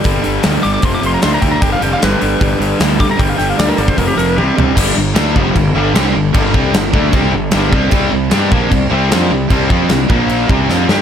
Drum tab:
CC |----------------|----------------|----------------|x---x---x---x---|
HH |o-o-o-o-o-o-o-o-|o-o-o-o-o-o-o-o-|o-o-o-o-o-o-----|----------------|
SD |----o-------o---|----o-------o---|--o-o-----------|--o-o-------o---|
T1 |----------------|----------------|------------o---|----------------|
FT |----------------|----------------|--------------o-|----------------|
BD |o-------o-----o-|o-------o-----o-|o------oo-------|o-----o-o-------|

CC |x---x---x---x---|x---x---x---x---|x---x---x-------|
HH |----------------|----------------|----------------|
SD |----o-------o---|----o-------o---|----o-------o-o-|
T1 |----------------|----------------|----------------|
FT |----------------|----------------|----------------|
BD |o-o---o-o-----o-|o-----o-o-------|o-o---o---o-----|